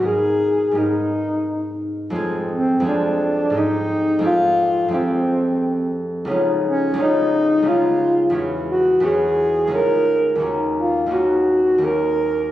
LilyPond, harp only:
\new Staff \with { instrumentName = "Harp" } { \time 3/4 \key gis \dorian \tempo 4 = 87 <gis, gis b dis' ais'>4 <gis, gis b dis' ais'>2 | <f, aes c' f' aes'>4 <f, aes c' f' aes'>4 <gis, gis bis dis' g'>4 | <f, aes c' f' g'>4 <f, aes c' f' g'>2 | <cis, b cis' dis' eis'>4 <cis, b cis' dis' eis'>4 <cis, b cis' dis' eis'>4 |
<e, b cis' e' fis'>4 <e, b cis' e' fis'>4 <cis, cis' dis' eis'>4 | <dis, ais cis' dis' fis'>4 <dis, ais cis' dis' fis'>4 <dis, ais cis' dis' fis'>4 | }